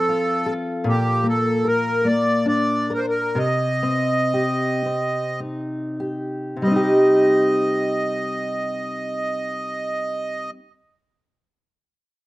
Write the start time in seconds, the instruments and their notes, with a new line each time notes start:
Already playing: steel-string acoustic guitar F3 C4 A4, accordion A4
0.09 steel-string acoustic guitar F4
0.46 steel-string acoustic guitar A4
0.84 steel-string acoustic guitar A#2
0.89 accordion G4
1.23 steel-string acoustic guitar A#3
1.29 accordion A4
1.64 steel-string acoustic guitar A#4, accordion A#4
2.05 steel-string acoustic guitar A#3, accordion D5
2.46 steel-string acoustic guitar D4, accordion D5
2.90 steel-string acoustic guitar A#4
2.94 accordion A#4 C5
3.09 accordion A#4
3.35 steel-string acoustic guitar C3, accordion D#5
3.83 steel-string acoustic guitar C4
4.34 steel-string acoustic guitar G4
4.86 steel-string acoustic guitar C4
5.40 steel-string acoustic guitar D#4
6.00 steel-string acoustic guitar G4
6.56 steel-string acoustic guitar C3
6.62 steel-string acoustic guitar G3, accordion D#5
6.67 steel-string acoustic guitar C4
6.71 steel-string acoustic guitar D#4
6.76 steel-string acoustic guitar G4